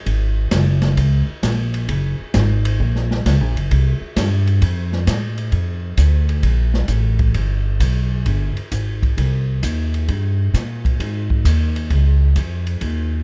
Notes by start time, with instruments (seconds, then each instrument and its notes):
0.06 upright bass G#1, kick, ride
0.51 upright bass F#1, kick, snare, hi-hat pedal, ride
0.82 snare, ride
0.97 upright bass C#2, kick, ride
1.28 muted upright bass stroke
1.43 upright bass A#1, kick, snare, hi-hat pedal, ride
1.74 ride
1.88 upright bass F#1, kick, ride
2.20 muted upright bass stroke
2.34 upright bass G#1, kick, snare, hi-hat pedal, ride
2.65 ride
2.80 upright bass A#1, kick
2.96 snare
3.11 snare
3.26 upright bass C#2, kick, snare, hi-hat pedal, ride
3.40 upright bass A#1
3.55 upright bass F#1, ride
3.71 upright bass C2, kick, ride
4.00 muted upright bass stroke
4.16 upright bass G2, kick, snare, hi-hat pedal, ride
4.47 ride
4.62 upright bass F2, kick, ride
4.93 snare
5.07 upright bass A2, kick, snare, hi-hat pedal, ride
5.38 ride
5.52 upright bass F2, kick, ride
5.97 upright bass D2, kick, hi-hat pedal, ride
6.29 ride
6.43 upright bass A#1, kick, ride
6.74 snare
6.88 upright bass A1, kick, hi-hat pedal, ride
7.19 kick, ride
7.34 upright bass G1, kick, ride
7.80 upright bass B1, kick, hi-hat pedal, ride
8.26 upright bass G1, kick, ride
8.56 muted upright bass stroke, ride
8.72 upright bass G#1, kick, hi-hat pedal, ride
9.03 kick, ride
9.17 upright bass C2, kick, ride
9.63 upright bass D#2, kick, hi-hat pedal, ride
9.94 ride
10.08 upright bass G2, kick, ride
10.54 upright bass A#2, kick, snare, hi-hat pedal, ride
10.85 kick, ride
11.00 upright bass G#2, kick, ride
11.30 kick
11.45 upright bass D#2, kick, hi-hat pedal, ride
11.76 ride
11.90 upright bass C#2, kick, ride
12.36 upright bass F2, kick, hi-hat pedal, ride
12.67 ride
12.81 upright bass D#2, kick, ride